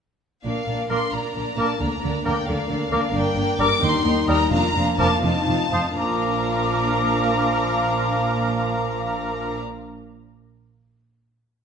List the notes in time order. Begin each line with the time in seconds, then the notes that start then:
0.43 A#1 A#2 A#3 D4 A#4 D5 F5
0.67 A#1 A#2 A#3 D4 A#4 D5
0.89 A#1 A#2 A#3 D4 A#4 D5 C6 D6
1.12 A#1 A#2 A#3 D4 A#4 D5 A#5
1.35 A#1 A#2 A#3 D4 A#4 D5
1.57 A#1 A#2 A#3 D4 A#4 D5 A5 D6
1.79 D2 D3 A#3 D4 A#4 D5 A#5
2.02 D2 D3 A#3 D4 A#4 D5
2.25 D2 D3 A#3 D4 A#4 D5 G5 D6
2.47 D2 D3 A#3 D4 A#4 D5 F5
2.69 D2 D3 A#3 D4 A#4 D5
2.91 D2 D3 A#3 D4 A#4 D5 D6
3.13 G1 G2 A#3 D4 A#4 D5 G5
3.36 G1 G2 A#3 D4 A#4 D5
3.59 G1 G2 G3 A#3 D4 A#4 D5 D6
3.82 D#2 G3 A#3 D#4 A#4 G5 C6
4.05 D#2 A#3 D#4 A#4 G5
4.27 D#2 G3 A#3 D#4 A#4 G5 A#5 D#6
4.51 F1 F2 F3 A#3 D4 F4 F5 A#5
4.74 F1 F2 A#3 D4 F4 F5
4.99 F1 F2 F3 A#3 D4 F4 A#4 F5 A5 D6
5.23 F1 F2 F3 C4 D#4 F4 F5 A5
5.47 F1 F2 C4 D#4 F4 F5
5.72 F1 F2 F3 C4 D#4 F4 C5 F5 D#6
5.96 A#1 A#2 F3 A#3 D4 F4 A#4 F5 A#5 D6